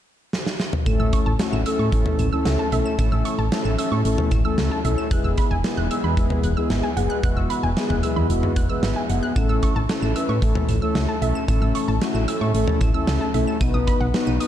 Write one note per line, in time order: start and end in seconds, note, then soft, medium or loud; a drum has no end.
0.33 snare medium
0.47 snare medium
0.60 snare medium
0.73 mid tom loud
0.86 0.98 A1 loud
0.86 1.32 A3 medium
0.86 1.32 C#4 medium
0.86 1.32 E4 medium
0.86 1.32 A4 loud
0.86 0.94 E7 medium
0.86 kick loud
0.86 closed hi-hat medium
1.00 1.11 A1 medium
1.00 1.07 E6 medium
1.13 1.21 C#6 medium
1.13 kick medium
1.13 closed hi-hat medium
1.26 1.38 A1 loud
1.26 1.34 A5 medium
1.39 1.62 A3 medium
1.39 1.62 C#4 medium
1.39 1.62 E4 medium
1.39 1.62 F#4 medium
1.39 snare loud
1.39 closed hi-hat medium
1.53 1.64 A1 medium
1.53 1.61 E7 medium
1.66 1.89 A3 medium
1.66 1.89 C#4 medium
1.66 1.89 E4 medium
1.66 1.89 A4 loud
1.66 1.74 E6 medium
1.66 closed hi-hat medium
1.79 1.91 A2 medium
1.79 1.87 C#6 medium
1.92 2.04 A1 loud
1.92 2.27 A3 medium
1.92 2.27 C#4 medium
1.92 2.27 E4 medium
1.92 2.27 A4 medium
1.92 kick medium
1.92 closed hi-hat medium
2.06 mid tom medium
2.19 2.31 A1 loud
2.19 2.27 E7 medium
2.19 closed hi-hat medium
2.32 2.67 A3 medium
2.32 2.67 C#4 medium
2.32 2.67 E4 medium
2.32 2.67 A4 loud
2.32 2.40 E6 medium
2.45 2.57 C#2 medium
2.45 snare loud
2.45 closed hi-hat medium
2.59 2.67 A5 medium
2.72 2.84 B1 medium
2.72 2.95 A3 medium
2.72 2.95 C#4 medium
2.72 2.95 E4 medium
2.72 2.95 A4 medium
2.72 2.80 E5 medium
2.72 closed hi-hat medium
2.85 2.93 E7 medium
2.99 3.10 A1 loud
2.99 3.45 A3 medium
2.99 3.45 C#4 medium
2.99 3.45 E4 medium
2.99 3.45 A4 loud
2.99 3.07 E7 loud
2.99 kick loud
2.99 closed hi-hat medium
3.12 3.23 A1 loud
3.12 3.20 E6 medium
3.25 3.33 C#6 medium
3.25 closed hi-hat medium
3.38 3.50 A1 medium
3.38 3.46 A5 medium
3.52 3.75 A3 medium
3.52 3.75 C#4 medium
3.52 3.75 E4 medium
3.52 3.75 A4 medium
3.52 snare loud
3.52 closed hi-hat medium
3.65 3.77 A1 medium
3.65 3.73 E7 medium
3.78 4.01 A3 medium
3.78 4.01 C#4 medium
3.78 4.01 E4 medium
3.78 4.01 A4 medium
3.78 3.86 E6 medium
3.78 closed hi-hat medium
3.92 4.03 A2 loud
3.92 3.99 C#6 medium
4.05 4.16 A1 loud
4.05 4.39 A3 medium
4.05 4.39 C#4 medium
4.05 4.39 E4 medium
4.05 4.39 A4 medium
4.05 closed hi-hat medium
4.18 mid tom medium
4.31 4.43 A1 loud
4.31 4.39 E7 medium
4.31 kick loud
4.31 closed hi-hat medium
4.45 4.79 A3 medium
4.45 4.79 C#4 medium
4.45 4.79 E4 medium
4.45 4.79 A4 medium
4.45 4.53 E6 medium
4.58 4.69 C#2 medium
4.58 snare loud
4.58 closed hi-hat medium
4.71 4.79 A5 medium
4.84 4.96 B1 medium
4.84 5.08 A3 medium
4.84 5.08 C#4 medium
4.84 5.08 E4 medium
4.84 5.08 A4 loud
4.84 4.93 E5 medium
4.84 closed hi-hat medium
4.98 5.06 E7 loud
5.11 5.23 E1 loud
5.11 5.57 G#3 medium
5.11 5.57 G#4 medium
5.11 5.19 F#6 loud
5.11 kick loud
5.11 closed hi-hat medium
5.24 5.36 E1 loud
5.24 5.32 E6 medium
5.38 5.45 B5 medium
5.38 kick medium
5.38 closed hi-hat medium
5.51 5.62 E1 loud
5.51 5.59 G#5 loud
5.64 5.87 G#3 medium
5.64 5.87 B3 medium
5.64 5.87 E4 medium
5.64 5.87 G#4 medium
5.64 snare loud
5.64 closed hi-hat medium
5.77 5.89 E1 medium
5.77 5.85 F#6 medium
5.91 6.14 G#3 medium
5.91 6.14 B3 medium
5.91 6.14 E4 medium
5.91 6.14 G#4 loud
5.91 5.99 E6 medium
5.91 closed hi-hat medium
6.04 6.15 E2 medium
6.04 6.12 B5 medium
6.17 6.29 E1 loud
6.17 6.52 G#3 medium
6.17 6.52 B3 medium
6.17 6.52 E4 medium
6.17 6.52 G#4 medium
6.17 kick medium
6.17 closed hi-hat medium
6.30 mid tom medium
6.43 6.55 E1 loud
6.43 6.52 F#6 medium
6.43 closed hi-hat medium
6.57 6.92 G#3 medium
6.57 6.92 B3 medium
6.57 6.92 E4 medium
6.57 6.92 G#4 loud
6.57 6.65 E6 medium
6.70 6.82 G#1 medium
6.70 snare loud
6.70 closed hi-hat medium
6.83 6.91 G#5 medium
6.97 7.08 F#1 medium
6.97 7.20 G#3 medium
6.97 7.20 B3 medium
6.97 7.20 E4 medium
6.97 7.20 G#4 medium
6.97 7.05 F#5 medium
6.97 closed hi-hat medium
7.10 7.18 F#6 loud
7.23 7.35 E1 loud
7.23 7.69 B3 medium
7.23 7.69 E4 medium
7.23 7.69 F#4 loud
7.23 7.31 F#6 loud
7.23 kick loud
7.23 closed hi-hat medium
7.37 7.48 E1 loud
7.37 7.45 E6 medium
7.50 7.58 B5 medium
7.50 closed hi-hat medium
7.63 7.75 E1 loud
7.63 7.71 G#5 medium
7.77 8.00 G#3 medium
7.77 8.00 B3 medium
7.77 8.00 E4 medium
7.77 8.00 G#4 loud
7.77 snare loud
7.77 closed hi-hat medium
7.90 8.01 E1 medium
7.90 7.98 F#6 medium
7.90 mid tom medium
8.03 8.26 G#3 medium
8.03 8.26 B3 medium
8.03 8.26 E4 medium
8.03 8.26 G#4 medium
8.03 8.11 E6 medium
8.03 closed hi-hat medium
8.16 8.28 E2 loud
8.16 8.24 B5 medium
8.30 8.41 E1 loud
8.30 8.64 G#3 medium
8.30 8.64 B3 medium
8.30 8.64 E4 medium
8.30 8.64 F#4 medium
8.30 closed hi-hat medium
8.43 mid tom medium
8.56 8.68 E1 loud
8.56 8.64 F#6 medium
8.56 kick medium
8.56 closed hi-hat medium
8.69 9.04 G#3 medium
8.69 9.04 B3 medium
8.69 9.04 E4 medium
8.69 9.04 B4 loud
8.69 8.77 E6 medium
8.83 8.94 G#1 medium
8.83 snare loud
8.83 closed hi-hat medium
8.96 9.04 G#5 medium
9.09 9.21 F#1 medium
9.09 9.32 G#3 medium
9.09 9.32 B3 medium
9.09 9.32 E4 medium
9.09 9.32 G#4 medium
9.09 9.17 F#5 medium
9.09 closed hi-hat medium
9.23 9.30 F#6 loud
9.36 9.47 A1 loud
9.36 9.82 A3 medium
9.36 9.82 C#4 medium
9.36 9.82 E4 medium
9.36 9.82 A4 loud
9.36 9.44 E7 loud
9.36 kick loud
9.36 closed hi-hat medium
9.49 9.61 A1 medium
9.49 9.57 E6 medium
9.63 9.70 C#6 medium
9.63 kick medium
9.63 closed hi-hat medium
9.76 9.87 A1 loud
9.76 9.84 A5 medium
9.89 10.12 A3 medium
9.89 10.12 C#4 medium
9.89 10.12 E4 medium
9.89 10.12 A4 medium
9.89 snare loud
9.89 closed hi-hat medium
10.02 10.14 A1 medium
10.02 10.10 E7 medium
10.16 10.39 A3 medium
10.16 10.39 C#4 medium
10.16 10.39 E4 medium
10.16 10.39 B4 loud
10.16 10.23 E6 medium
10.16 closed hi-hat medium
10.29 10.40 A2 loud
10.29 10.37 C#6 medium
10.42 10.54 A1 loud
10.42 10.77 A3 medium
10.42 10.77 C#4 medium
10.42 10.77 E4 medium
10.42 10.77 A4 medium
10.42 kick medium
10.42 closed hi-hat medium
10.55 mid tom medium
10.69 10.80 A1 loud
10.69 10.77 E7 medium
10.69 closed hi-hat medium
10.82 11.17 A3 medium
10.82 11.17 C#4 medium
10.82 11.17 E4 medium
10.82 11.17 A4 loud
10.82 10.90 E6 medium
10.95 11.07 C#2 medium
10.95 snare loud
10.95 closed hi-hat medium
11.09 11.16 A5 medium
11.22 11.33 B1 medium
11.22 11.45 A3 medium
11.22 11.45 C#4 medium
11.22 11.45 E4 medium
11.22 11.45 A4 loud
11.22 11.30 E5 medium
11.22 closed hi-hat medium
11.35 11.43 E7 loud
11.48 11.60 A1 loud
11.48 11.94 A3 medium
11.48 11.94 C#4 medium
11.48 11.94 E4 medium
11.48 11.94 A4 medium
11.48 11.56 E7 loud
11.48 kick loud
11.48 closed hi-hat medium
11.61 11.73 A1 loud
11.61 11.70 E6 medium
11.75 11.83 C#6 medium
11.75 closed hi-hat medium
11.88 12.00 A1 medium
11.88 11.96 A5 medium
12.01 12.24 A3 medium
12.01 12.24 C#4 medium
12.01 12.24 E4 medium
12.01 12.24 F#4 loud
12.01 snare loud
12.01 closed hi-hat medium
12.15 12.26 A1 medium
12.15 12.23 E7 medium
12.28 12.51 A3 medium
12.28 12.51 C#4 medium
12.28 12.51 E4 medium
12.28 12.51 A4 loud
12.28 12.36 E6 medium
12.28 closed hi-hat medium
12.41 12.53 A2 loud
12.41 12.49 C#6 medium
12.54 12.66 A1 loud
12.54 12.89 A3 medium
12.54 12.89 C#4 medium
12.54 12.89 E4 medium
12.54 12.89 A4 medium
12.54 closed hi-hat medium
12.68 mid tom medium
12.81 12.93 A1 loud
12.81 12.89 E7 medium
12.81 kick loud
12.81 closed hi-hat medium
12.94 13.29 A3 medium
12.94 13.29 C#4 medium
12.94 13.29 E4 medium
12.94 13.29 A4 loud
12.94 13.02 E6 medium
13.07 13.19 C#2 loud
13.07 snare loud
13.07 closed hi-hat medium
13.21 13.29 A5 medium
13.34 13.46 B1 medium
13.34 13.57 A3 medium
13.34 13.57 C#4 medium
13.34 13.57 E4 medium
13.34 13.57 A4 loud
13.34 13.42 E5 medium
13.34 closed hi-hat medium
13.47 13.55 E7 loud
13.61 13.72 B1 loud
13.61 14.07 B3 medium
13.61 14.07 D#4 medium
13.61 14.07 F#4 medium
13.61 13.68 D#7 loud
13.61 kick loud
13.61 closed hi-hat medium
13.74 13.86 B1 medium
13.74 13.82 D#6 medium
13.87 13.95 B5 medium
13.87 kick medium
13.87 closed hi-hat medium
14.01 14.12 B1 loud
14.01 14.08 F#5 medium
14.14 14.37 B3 medium
14.14 14.37 D#4 medium
14.14 14.37 F#4 medium
14.14 14.37 B4 medium
14.14 snare loud
14.14 closed hi-hat medium
14.27 14.39 B1 medium
14.27 14.35 D#7 medium
14.40 14.47 B3 medium
14.40 14.47 D#4 medium
14.40 14.47 F#4 medium
14.40 14.47 B4 medium
14.40 14.47 D#6 medium
14.40 closed hi-hat medium